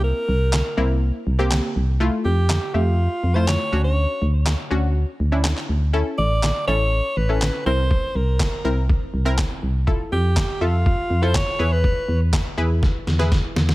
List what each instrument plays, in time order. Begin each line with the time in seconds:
Already playing: fm bass C2, synth pluck A#3 C4 E4
0.04 alto saxophone A#4
0.29 fm bass C2
0.53 snare, clap
0.77 fm bass C2, synth pluck A#3 C4 E4
1.27 fm bass C2
1.39 synth pluck A#3 C4 G4
1.51 snare, clap
1.76 fm bass C2
2.00 synth pluck A3 E4 F4
2.25 fm bass F2, alto saxophone G4
2.50 snare, clap
2.74 fm bass F2, synth pluck A3 G4 E5, alto saxophone F4
3.23 fm bass F2
3.35 synth pluck A3 E4 F4, alto saxophone C5
3.47 alto saxophone C#5, snare, clap
3.72 fm bass D2, synth pluck C#4 D4 F#4
3.84 alto saxophone C#5
4.22 fm bass D2
4.46 snare, clap
4.70 fm bass D2, synth pluck C#4 D4 F#4
5.20 fm bass D2
5.32 synth pluck C#4 D4 E4
5.44 snare, clap
5.57 clap
5.69 fm bass D2
5.93 synth pluck C#4 E4 A4
6.18 fm bass A1, alto saxophone D5
6.43 snare, clap
6.67 fm bass A1, synth pluck C#4 E4 A4, alto saxophone C#5
7.17 fm bass A1, alto saxophone B4
7.29 synth pluck C#4 E4 A4
7.42 snare, clap
7.66 fm bass C2, synth pluck C4 E4 A#4, alto saxophone C5
7.91 kick
8.15 fm bass C2, alto saxophone A#4
8.40 kick, snare, clap
8.64 fm bass C2, synth pluck C4 E4 A#4
8.90 kick
9.14 fm bass C2
9.25 synth pluck C4 E4 A#4
9.38 kick, snare, clap
9.63 fm bass C2
9.87 synth pluck E4 F4 A4, kick
10.12 fm bass F2, alto saxophone G4
10.36 kick, snare, clap
10.61 fm bass F2, synth pluck F4 A4 E5, alto saxophone F4
10.86 kick
11.10 fm bass F2
11.22 synth pluck E4 F4 A4, alto saxophone C5
11.35 alto saxophone C#5, kick, snare, clap
11.59 fm bass E2, synth pluck E4 G#4 B4
11.72 alto saxophone B4
11.84 kick
12.08 fm bass E2
12.33 kick, snare, clap
12.57 fm bass E2, synth pluck E4 G#4 B4
12.83 kick, snare
13.07 fm bass E2, snare
13.19 synth pluck E4 G#4 B4, snare
13.32 kick, snare
13.56 fm bass E2, snare
13.69 snare